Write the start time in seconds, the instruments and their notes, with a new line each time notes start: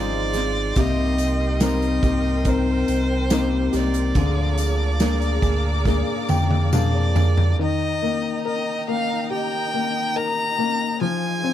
Already playing: sub bass G#1, steel-string acoustic guitar F3 C4 D#4 G#4, grand piano F3 D#4 F4 G#4, string section G#4 F5 C6, violin D5
0.33 steel-string acoustic guitar C4 D#4 G#4, snare, closed hi-hat, tambourine
0.75 sub bass C2, steel-string acoustic guitar C3 G3 A#3 D#4 G4, grand piano C3, string section A#4 G5, kick, closed hi-hat, tambourine
0.80 violin D#5
1.18 closed hi-hat, tambourine
1.60 steel-string acoustic guitar G3 A#3 D#4 G4, grand piano C4 D#4 A#4, snare, closed hi-hat, tambourine
1.64 violin D#5
1.82 closed hi-hat
2.03 sub bass C2, steel-string acoustic guitar A#3 D#4 G4, kick, closed hi-hat, tambourine
2.45 grand piano C4 D#4 A#4, kick, closed hi-hat
2.49 violin C5
2.88 sub bass C2, closed hi-hat, tambourine
3.30 steel-string acoustic guitar G3 A#3 D#4 G4, grand piano C4 D#4 A#4, snare, closed hi-hat, tambourine
3.73 sub bass C2, steel-string acoustic guitar A#3 D#4 G4, violin D5, snare, closed hi-hat, tambourine
3.94 closed hi-hat
4.14 sub bass D2, steel-string acoustic guitar D3 F3 A#3 D4 G#4, grand piano D3, string section G#4 F5 A#5 D6, kick, closed hi-hat, tambourine
4.58 closed hi-hat, tambourine
4.99 steel-string acoustic guitar F3 A#3 D4 G#4, grand piano A#3 D4 G#4, snare, closed hi-hat, tambourine
5.22 closed hi-hat
5.42 sub bass D2, steel-string acoustic guitar A#3 D4 G#4, kick, closed hi-hat, tambourine
5.85 grand piano A#3 D4 G#4, kick, snare, tambourine
6.29 sub bass F2, grand piano G5, high tom, tambourine
6.51 high tom
6.72 steel-string acoustic guitar F3 A#3 D4 G#4, grand piano A#3 D4 G#4 F5, violin D5, mid tom, tambourine
6.95 grand piano D5
7.15 steel-string acoustic guitar A#3 D4 G#4, floor tom, tambourine
7.38 floor tom
7.57 grand piano D#3, string section D#4 D#5 G5 A#5
7.62 violin D#5
8.02 grand piano A#3
8.45 grand piano A#4, violin D#5
8.88 grand piano A#3, violin F5
9.30 grand piano G4, violin G5
9.74 grand piano A#3
10.16 grand piano A#4, violin A#5
10.58 grand piano A#3
11.00 grand piano F3, string section G#4 C5 F5, violin G#5
11.44 grand piano C4